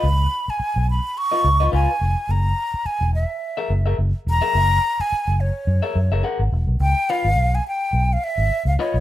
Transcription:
X:1
M:4/4
L:1/16
Q:"Swing 16ths" 1/4=106
K:Gb
V:1 name="Flute"
c'3 a3 c'2 d'4 a4 | b4 a2 _f6 z2 b2- | b3 a3 d6 z4 | =g2 f3 a g3 f _f3 =f d2 |]
V:2 name="Clean electric guitar"
z8 z [Fce] z [Fce] [Fcf] z3 | z8 z [AB_f] z [ABf] z3 [ABf] | z8 z [AB_f] z [ABf] [ABg] z3 | z2 [Fcf] z8 z3 [Fce] z |]
V:3 name="Fingered electric bass" clef=bass
D,,2 z3 C,,2 z3 D,,2 D,, z F,,, z | G,,,2 z3 _F,,,2 z3 G,,,2 G,,, z F,,, z | G,,,2 z3 G,,,2 z G,, z G,, G,,, z A,,, _F,,, C,, | D,, z2 A,,, C,,2 z2 C,,2 z A,,, z D,, z C,, |]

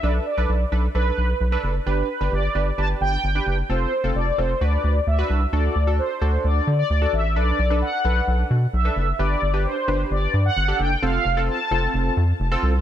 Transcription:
X:1
M:4/4
L:1/16
Q:1/4=131
K:G
V:1 name="Analog polysynth"
d2 d4 z2 B6 z2 | B4 d4 a2 g4 g2 | c4 d2 c2 d4 e4 | d4 c4 d3 d3 e2 |
d4 f6 z2 e4 | d4 c4 d3 f3 g2 | =f4 a6 z6 |]
V:2 name="Synth keys"
[DAB]2 z [DAB]2 z [DAB] z [DAB]3 z2 [DAB]2 z | [DGB]2 z [DGB]2 z [DGB] z [DGB]3 z2 [DGB]2 z | [C=FA]2 z [CFA]2 z [CFA] z [D^FB]3 z2 [DFB]2 z | [DFA]2 z [DFA]2 z [DFA]4- [DFA] z2 [DFA]2 z |
[DAB]2 z [DAB]2 z [DAB]4- [DAB] z2 [DAB]2 z | [DGB]2 z [DGB]2 z [DGB]4- [DGB] z2 [DGA]2 z | [C=FA]2 z [CFA]2 z [CFA]4- [CFA] z2 [CFA]2 z |]
V:3 name="Analog synth bass" clef=bass
B,,,2 z B,,, B,,,2 B,,,2 B,,,2 B,,,2 B,,,2 F,,,2 | G,,,2 z G,,, G,,,2 G,,,2 G,,,2 G,,,2 G,,,2 F,,,2 | =F,,,2 z F,,, F,,,2 F,,,2 D,,2 D,,2 D,,2 C,,2 | D,,2 D,,3 z D,,2 D,,2 D,2 D,,2 A,,,2 |
B,,,2 B,,,3 z B,,,2 B,,,2 B,,2 B,,,2 F,,,2 | G,,,2 G,,,3 z G,,,2 G,,,2 G,,2 G,,,2 F,,,2 | =F,,,2 F,,,3 z F,,,2 F,,,2 =F,,2 F,,,2 C,,2 |]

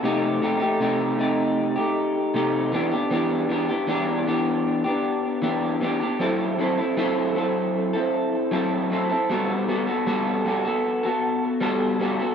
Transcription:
X:1
M:4/4
L:1/16
Q:1/4=78
K:G
V:1 name="Clean electric guitar"
[C,A,_EG]2 [C,A,EG] [A,EG] [C,A,EG]2 [C,A,EG]3 [A,EG]3 [C,A,EG]2 [=E,B,DG] [B,DG] | [E,B,DG]2 [E,B,DG] [B,DG] [E,B,DG]2 [E,B,DG]3 [B,DG]3 [E,B,DG]2 [E,B,DG] [B,DG] | [F,CEA]2 [F,CEA] [CEA] [F,CEA]2 [F,CEA]3 [CEA]3 [F,CEA]2 [F,CEA] [CEA] | [G,B,FA]2 [G,B,FA] [B,FA] [G,B,FA]2 [G,B,FA] [B,FA]2 [B,FA]3 [G,B,FA]2 [G,B,FA] [B,FA] |]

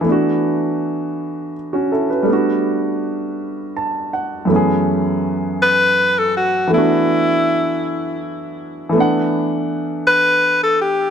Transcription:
X:1
M:6/8
L:1/16
Q:3/8=54
K:Edor
V:1 name="Tenor saxophone"
z12 | z12 | z6 B3 A F2 | E8 z4 |
z6 B3 A G2 |]
V:2 name="Grand piano"
z8 z [CF] [EA] [FB]- | [FB] z6 z a2 f2 | z12 | z12 |
z12 |]
V:3 name="Grand piano"
[E,A,B,DF]12 | [G,A,B,DF]12 | [F,,E,A,B,C^G]12 | [E,A,B,DF]12 |
[E,A,B,Df]12 |]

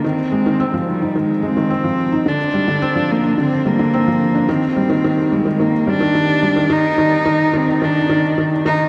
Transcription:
X:1
M:4/4
L:1/16
Q:1/4=108
K:Cm
V:1 name="Cello"
C6 G,2 A,2 C6 | D6 B,2 C2 B,6 | C6 A,2 B,2 D6 | E6 C2 D4 z2 E2 |]
V:2 name="Felt piano" clef=bass
E, z A, E, C F, z E E, z A, E, C F, z E | D, z G, D, C F, z D D, z G, D, C F, z D | E, z G, E, E, z G, E, E, z G, E, E, z G, E, | E, z E, z E, z E, z E, z E, z E, z E, z |]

